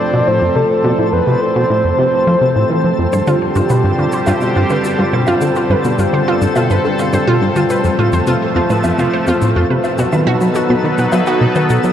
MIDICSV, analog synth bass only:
0, 0, Header, 1, 2, 480
1, 0, Start_track
1, 0, Tempo, 571429
1, 709, Time_signature, 4, 2, 24, 8
1, 10018, End_track
2, 0, Start_track
2, 0, Title_t, "Analog synth bass"
2, 0, Program_c, 0, 38
2, 111, Note_on_c, 0, 47, 101
2, 184, Note_off_c, 0, 47, 0
2, 230, Note_on_c, 0, 45, 85
2, 341, Note_off_c, 0, 45, 0
2, 350, Note_on_c, 0, 41, 74
2, 424, Note_off_c, 0, 41, 0
2, 470, Note_on_c, 0, 48, 74
2, 544, Note_off_c, 0, 48, 0
2, 710, Note_on_c, 0, 47, 101
2, 784, Note_off_c, 0, 47, 0
2, 831, Note_on_c, 0, 45, 78
2, 941, Note_off_c, 0, 45, 0
2, 951, Note_on_c, 0, 41, 79
2, 1024, Note_off_c, 0, 41, 0
2, 1070, Note_on_c, 0, 48, 78
2, 1144, Note_off_c, 0, 48, 0
2, 1311, Note_on_c, 0, 47, 100
2, 1384, Note_off_c, 0, 47, 0
2, 1429, Note_on_c, 0, 45, 79
2, 1541, Note_off_c, 0, 45, 0
2, 1551, Note_on_c, 0, 41, 73
2, 1624, Note_off_c, 0, 41, 0
2, 1668, Note_on_c, 0, 48, 84
2, 1743, Note_off_c, 0, 48, 0
2, 1908, Note_on_c, 0, 53, 103
2, 1983, Note_off_c, 0, 53, 0
2, 2027, Note_on_c, 0, 48, 76
2, 2139, Note_off_c, 0, 48, 0
2, 2149, Note_on_c, 0, 45, 82
2, 2223, Note_off_c, 0, 45, 0
2, 2267, Note_on_c, 0, 52, 72
2, 2379, Note_off_c, 0, 52, 0
2, 2388, Note_on_c, 0, 53, 75
2, 2463, Note_off_c, 0, 53, 0
2, 2508, Note_on_c, 0, 41, 93
2, 2583, Note_off_c, 0, 41, 0
2, 2627, Note_on_c, 0, 43, 84
2, 2702, Note_off_c, 0, 43, 0
2, 2749, Note_on_c, 0, 50, 81
2, 2823, Note_off_c, 0, 50, 0
2, 2989, Note_on_c, 0, 43, 103
2, 3033, Note_off_c, 0, 43, 0
2, 3109, Note_on_c, 0, 47, 80
2, 3221, Note_off_c, 0, 47, 0
2, 3228, Note_on_c, 0, 43, 75
2, 3303, Note_off_c, 0, 43, 0
2, 3347, Note_on_c, 0, 50, 77
2, 3422, Note_off_c, 0, 50, 0
2, 3589, Note_on_c, 0, 43, 104
2, 3633, Note_off_c, 0, 43, 0
2, 3711, Note_on_c, 0, 47, 74
2, 3821, Note_off_c, 0, 47, 0
2, 3831, Note_on_c, 0, 43, 77
2, 3904, Note_off_c, 0, 43, 0
2, 3950, Note_on_c, 0, 50, 80
2, 4024, Note_off_c, 0, 50, 0
2, 4190, Note_on_c, 0, 43, 98
2, 4234, Note_off_c, 0, 43, 0
2, 4309, Note_on_c, 0, 47, 75
2, 4421, Note_off_c, 0, 47, 0
2, 4428, Note_on_c, 0, 43, 75
2, 4503, Note_off_c, 0, 43, 0
2, 4550, Note_on_c, 0, 50, 84
2, 4624, Note_off_c, 0, 50, 0
2, 4787, Note_on_c, 0, 43, 101
2, 4833, Note_off_c, 0, 43, 0
2, 4912, Note_on_c, 0, 47, 75
2, 5022, Note_off_c, 0, 47, 0
2, 5028, Note_on_c, 0, 43, 77
2, 5103, Note_off_c, 0, 43, 0
2, 5149, Note_on_c, 0, 50, 75
2, 5223, Note_off_c, 0, 50, 0
2, 5389, Note_on_c, 0, 43, 105
2, 5433, Note_off_c, 0, 43, 0
2, 5507, Note_on_c, 0, 47, 88
2, 5620, Note_off_c, 0, 47, 0
2, 5629, Note_on_c, 0, 43, 78
2, 5704, Note_off_c, 0, 43, 0
2, 5750, Note_on_c, 0, 50, 76
2, 5824, Note_off_c, 0, 50, 0
2, 5990, Note_on_c, 0, 43, 98
2, 6034, Note_off_c, 0, 43, 0
2, 6110, Note_on_c, 0, 47, 75
2, 6221, Note_off_c, 0, 47, 0
2, 6229, Note_on_c, 0, 43, 80
2, 6303, Note_off_c, 0, 43, 0
2, 6351, Note_on_c, 0, 50, 75
2, 6424, Note_off_c, 0, 50, 0
2, 6589, Note_on_c, 0, 41, 105
2, 6633, Note_off_c, 0, 41, 0
2, 6708, Note_on_c, 0, 45, 77
2, 6820, Note_off_c, 0, 45, 0
2, 6828, Note_on_c, 0, 41, 74
2, 6903, Note_off_c, 0, 41, 0
2, 6948, Note_on_c, 0, 48, 80
2, 7023, Note_off_c, 0, 48, 0
2, 7188, Note_on_c, 0, 41, 107
2, 7233, Note_off_c, 0, 41, 0
2, 7308, Note_on_c, 0, 45, 77
2, 7420, Note_off_c, 0, 45, 0
2, 7430, Note_on_c, 0, 41, 88
2, 7504, Note_off_c, 0, 41, 0
2, 7547, Note_on_c, 0, 48, 81
2, 7622, Note_off_c, 0, 48, 0
2, 7788, Note_on_c, 0, 41, 100
2, 7833, Note_off_c, 0, 41, 0
2, 7911, Note_on_c, 0, 45, 82
2, 8022, Note_off_c, 0, 45, 0
2, 8031, Note_on_c, 0, 41, 77
2, 8104, Note_off_c, 0, 41, 0
2, 8151, Note_on_c, 0, 48, 81
2, 8224, Note_off_c, 0, 48, 0
2, 8390, Note_on_c, 0, 47, 103
2, 8434, Note_off_c, 0, 47, 0
2, 8509, Note_on_c, 0, 51, 77
2, 8620, Note_off_c, 0, 51, 0
2, 8630, Note_on_c, 0, 47, 79
2, 8704, Note_off_c, 0, 47, 0
2, 8749, Note_on_c, 0, 54, 75
2, 8823, Note_off_c, 0, 54, 0
2, 8987, Note_on_c, 0, 47, 100
2, 9033, Note_off_c, 0, 47, 0
2, 9106, Note_on_c, 0, 51, 83
2, 9219, Note_off_c, 0, 51, 0
2, 9228, Note_on_c, 0, 47, 76
2, 9302, Note_off_c, 0, 47, 0
2, 9346, Note_on_c, 0, 54, 88
2, 9422, Note_off_c, 0, 54, 0
2, 9586, Note_on_c, 0, 47, 101
2, 9632, Note_off_c, 0, 47, 0
2, 9708, Note_on_c, 0, 51, 76
2, 9820, Note_off_c, 0, 51, 0
2, 9828, Note_on_c, 0, 47, 84
2, 9903, Note_off_c, 0, 47, 0
2, 9946, Note_on_c, 0, 54, 79
2, 10018, Note_off_c, 0, 54, 0
2, 10018, End_track
0, 0, End_of_file